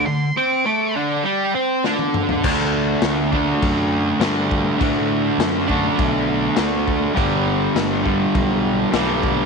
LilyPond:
<<
  \new Staff \with { instrumentName = "Lead electric guitar" } { \time 4/4 \key d \major \tempo 4 = 102 c'''8 d'''4 r2 r8 | r1 | r1 | r1 | }
  \new Staff \with { instrumentName = "Distorted electric guitar" } { \time 4/4 \key d \major d8 <c' c''>8 <a a'>8 <d d'>8 <g g'>8 <c' c''>8 <d d'>4 | <d a d'>4. <d a d'>4. <d a d'>4 | <d a d'>4. <d a d'>4. <d a d'>4 | <g, d g>4. <g, d g>4. <g, d g>4 | }
  \new Staff \with { instrumentName = "Picked electric bass" } { \clef bass \time 4/4 \key d \major r1 | d,4 d,4 fis,4 g,4 | a,4 fis,4 b,,4 d,4 | g,,4 g,,4 b,,4 b,,4 | }
  \new DrumStaff \with { instrumentName = "Drums" } \drummode { \time 4/4 r4 r4 r4 sn16 tommh16 toml16 tomfh16 | <cymc bd>4 <cymc sn>8 bd8 <cymc bd>4 <cymc sn>8 bd8 | <cymc bd>4 <cymc sn>8 bd8 <cymc bd>4 <cymc sn>8 bd8 | <cymc bd>4 <cymc sn>8 bd8 <cymc bd>4 <cymc sn>8 bd8 | }
>>